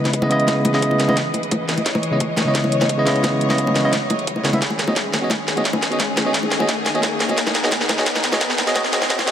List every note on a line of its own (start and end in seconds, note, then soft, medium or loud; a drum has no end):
0.00 1.59 B1 medium
0.00 0.20 C#3 medium
0.00 4.58 E3 medium
0.00 0.20 G#3 medium
0.00 0.20 B3 medium
0.00 0.21 E4 medium
0.00 1.83 B4 medium
0.00 0.21 D#5 medium
0.00 4.58 D#5 medium
0.00 riser medium
0.05 snare soft
0.05 closed hi-hat soft
0.05 high bongo medium
0.13 kick medium
0.13 closed hi-hat medium
0.22 0.28 C#3 medium
0.22 0.28 G#3 medium
0.22 0.29 B3 medium
0.22 0.29 E4 medium
0.22 0.29 D#5 medium
0.22 high bongo medium
0.29 0.71 C#3 medium
0.29 0.72 G#3 medium
0.29 0.72 B3 medium
0.29 0.72 E4 medium
0.29 0.73 D#5 loud
0.29 closed hi-hat medium
0.40 closed hi-hat soft
0.47 kick medium
0.47 snare medium
0.47 closed hi-hat medium
0.47 high bongo medium
0.65 closed hi-hat medium
0.65 high bongo medium
0.73 1.06 C#3 medium
0.73 1.06 G#3 medium
0.73 1.06 B3 medium
0.73 1.07 E4 medium
0.73 1.07 D#5 medium
0.73 snare soft
0.82 kick medium
0.82 closed hi-hat medium
0.91 high bongo medium
1.00 snare medium
1.00 closed hi-hat medium
1.08 1.17 C#3 medium
1.08 1.17 G#3 medium
1.08 1.17 B3 medium
1.08 1.17 E4 medium
1.08 1.17 D#5 medium
1.08 high bongo medium
1.17 kick medium
1.17 snare medium
1.17 closed hi-hat medium
1.34 closed hi-hat medium
1.34 high bongo medium
1.43 closed hi-hat soft
1.51 kick medium
1.51 closed hi-hat medium
1.51 high bongo medium
1.69 1.84 D#2 medium
1.69 snare medium
1.69 closed hi-hat medium
1.77 closed hi-hat soft
1.77 high bongo medium
1.86 2.65 C#2 loud
1.86 4.59 C#5 medium
1.86 kick medium
1.86 snare medium
1.86 closed hi-hat medium
1.95 high bongo medium
2.03 closed hi-hat medium
2.11 2.17 C#3 medium
2.11 2.17 G#3 medium
2.11 2.17 B3 medium
2.11 2.18 E4 medium
2.11 2.18 D#5 medium
2.20 kick loud
2.20 closed hi-hat medium
2.20 high bongo medium
2.37 snare medium
2.37 closed hi-hat medium
2.37 high bongo medium
2.45 2.95 C#3 medium
2.45 2.96 G#3 medium
2.45 2.96 B3 medium
2.45 2.97 E4 medium
2.45 2.97 D#5 medium
2.55 kick medium
2.55 snare medium
2.55 closed hi-hat medium
2.64 3.92 B1 medium
2.64 high bongo medium
2.72 closed hi-hat medium
2.81 snare medium
2.81 closed hi-hat soft
2.81 high bongo medium
2.89 kick loud
2.89 closed hi-hat medium
2.97 3.04 C#3 medium
2.97 3.04 G#3 medium
2.97 3.05 B3 medium
2.97 3.05 E4 medium
2.97 3.05 D#5 medium
3.05 3.47 C#3 medium
3.05 3.47 G#3 medium
3.05 3.48 B3 medium
3.05 3.48 E4 medium
3.05 3.49 D#5 loud
3.05 snare medium
3.05 closed hi-hat medium
3.05 high bongo medium
3.16 closed hi-hat soft
3.24 kick medium
3.24 snare medium
3.24 closed hi-hat medium
3.24 high bongo medium
3.41 closed hi-hat medium
3.49 3.82 C#3 medium
3.49 3.82 G#3 medium
3.49 3.82 B3 medium
3.49 3.83 E4 medium
3.49 3.83 D#5 medium
3.49 snare medium
3.49 high bongo medium
3.58 kick loud
3.58 closed hi-hat medium
3.67 high bongo medium
3.76 snare medium
3.76 closed hi-hat medium
3.84 3.92 C#3 medium
3.84 3.93 G#3 medium
3.84 3.93 B3 medium
3.84 3.93 E4 medium
3.84 3.93 D#5 loud
3.93 4.08 B1 medium
3.93 kick medium
3.93 snare medium
3.93 closed hi-hat medium
3.93 high bongo medium
4.10 4.60 B1 medium
4.10 closed hi-hat medium
4.10 high bongo medium
4.19 closed hi-hat soft
4.27 kick medium
4.27 closed hi-hat medium
4.36 high bongo medium
4.44 4.50 C#3 medium
4.44 4.50 G#3 medium
4.44 4.50 B3 medium
4.44 4.50 E4 medium
4.44 4.51 C#5 medium
4.44 snare medium
4.44 closed hi-hat medium
4.53 4.58 C#3 medium
4.53 4.59 G#3 medium
4.53 4.59 B3 medium
4.53 4.59 E4 medium
4.53 4.59 E5 medium
4.53 closed hi-hat soft
4.53 high bongo medium
4.62 5.41 B1 loud
4.62 9.31 D#3 medium
4.62 7.35 C#4 medium
4.62 9.31 G#4 medium
4.62 kick loud
4.62 snare medium
4.62 closed hi-hat medium
4.70 high bongo soft
4.79 snare medium
4.79 closed hi-hat medium
4.87 4.93 B3 medium
4.87 4.93 F#4 medium
4.87 4.93 G#4 medium
4.87 4.93 C#5 medium
4.87 4.94 D#5 medium
4.87 high bongo medium
4.96 kick medium
4.96 snare medium
4.96 closed hi-hat medium
5.13 snare medium
5.13 closed hi-hat medium
5.13 high bongo soft
5.21 5.29 B3 medium
5.21 5.29 F#4 medium
5.21 5.29 G#4 medium
5.21 5.30 C#5 medium
5.21 5.30 D#5 medium
5.30 kick loud
5.30 snare medium
5.30 closed hi-hat medium
5.30 high bongo medium
5.40 7.11 G#1 medium
5.48 snare medium
5.48 closed hi-hat medium
5.56 5.62 B3 medium
5.56 5.62 F#4 medium
5.56 5.62 G#4 medium
5.56 5.62 C#5 medium
5.56 5.63 D#5 medium
5.56 closed hi-hat soft
5.56 high bongo medium
5.65 kick loud
5.65 snare medium
5.65 closed hi-hat medium
5.73 high bongo medium
5.83 snare medium
5.83 closed hi-hat medium
5.90 5.98 B3 medium
5.90 5.98 F#4 medium
5.90 5.98 G#4 medium
5.90 5.99 C#5 medium
5.90 5.99 D#5 medium
5.90 closed hi-hat soft
5.99 kick medium
5.99 snare medium
5.99 closed hi-hat medium
5.99 high bongo soft
6.17 snare medium
6.17 closed hi-hat medium
6.17 high bongo medium
6.25 6.31 B3 medium
6.25 6.31 F#4 medium
6.25 6.31 G#4 medium
6.25 6.31 C#5 medium
6.25 6.32 D#5 medium
6.34 kick loud
6.34 snare medium
6.34 closed hi-hat medium
6.43 high bongo soft
6.51 snare medium
6.51 closed hi-hat medium
6.59 6.66 B3 medium
6.59 6.67 F#4 medium
6.59 6.67 G#4 medium
6.59 6.68 C#5 medium
6.59 6.68 D#5 medium
6.59 high bongo medium
6.69 kick medium
6.69 snare medium
6.69 closed hi-hat medium
6.86 snare medium
6.86 closed hi-hat medium
6.86 high bongo soft
6.94 7.00 B3 medium
6.94 7.00 F#4 medium
6.94 7.00 G#4 medium
6.94 7.00 C#5 medium
6.94 7.00 D#5 medium
6.94 closed hi-hat soft
7.03 kick loud
7.03 snare medium
7.03 closed hi-hat medium
7.03 high bongo medium
7.20 7.36 C#2 loud
7.20 snare medium
7.20 closed hi-hat medium
7.28 7.35 B3 medium
7.28 7.36 F#4 medium
7.28 7.36 G#4 medium
7.28 7.37 C#5 medium
7.28 7.37 D#5 medium
7.28 closed hi-hat soft
7.28 high bongo soft
7.37 8.17 B1 loud
7.37 9.31 D#4 medium
7.37 kick loud
7.37 snare medium
7.37 closed hi-hat loud
7.47 snare medium
7.47 high bongo medium
7.55 snare medium
7.55 closed hi-hat medium
7.63 7.69 B3 medium
7.63 7.69 F#4 medium
7.63 7.69 G#4 medium
7.63 7.69 C#5 medium
7.63 7.70 D#5 medium
7.63 snare medium
7.71 kick loud
7.71 snare medium
7.71 closed hi-hat medium
7.71 high bongo medium
7.81 snare medium
7.89 snare loud
7.89 closed hi-hat medium
7.89 high bongo medium
7.97 8.03 B3 medium
7.97 8.03 F#4 medium
7.97 8.04 G#4 medium
7.97 8.04 C#5 medium
7.97 8.04 D#5 medium
7.97 snare medium
8.06 kick medium
8.06 snare loud
8.06 closed hi-hat medium
8.15 snare medium
8.15 high bongo soft
8.24 snare loud
8.24 closed hi-hat medium
8.32 8.38 B3 medium
8.32 8.38 F#4 medium
8.32 8.38 G#4 medium
8.32 8.38 C#5 medium
8.32 8.38 D#5 medium
8.32 snare medium
8.32 closed hi-hat soft
8.32 high bongo medium
8.41 kick loud
8.41 snare medium
8.41 closed hi-hat medium
8.50 snare medium
8.58 snare loud
8.58 closed hi-hat medium
8.58 high bongo soft
8.66 8.72 B3 medium
8.66 8.72 F#4 medium
8.66 8.73 G#4 medium
8.66 8.73 C#5 medium
8.66 8.73 D#5 medium
8.66 snare medium
8.66 closed hi-hat soft
8.75 8.81 B3 medium
8.75 8.81 F#4 medium
8.75 8.81 G#4 medium
8.75 8.81 C#5 medium
8.75 8.82 D#5 medium
8.75 kick loud
8.75 snare loud
8.75 closed hi-hat loud
8.75 high bongo medium
8.85 snare medium
8.92 8.98 B3 medium
8.92 8.98 F#4 medium
8.92 8.98 G#4 medium
8.92 8.99 C#5 medium
8.92 8.99 D#5 medium
8.92 snare loud
8.92 closed hi-hat medium
9.02 snare medium
9.02 high bongo medium
9.09 9.15 B3 medium
9.09 9.15 F#4 medium
9.09 9.16 G#4 medium
9.09 9.16 C#5 medium
9.09 9.16 D#5 medium
9.09 kick loud
9.09 snare loud
9.09 closed hi-hat loud
9.19 snare medium
9.19 high bongo medium
9.26 9.31 B3 medium
9.26 9.31 F#4 medium
9.26 9.31 G#4 medium
9.26 9.31 C#5 medium
9.26 9.31 D#5 medium
9.26 snare loud
9.26 closed hi-hat medium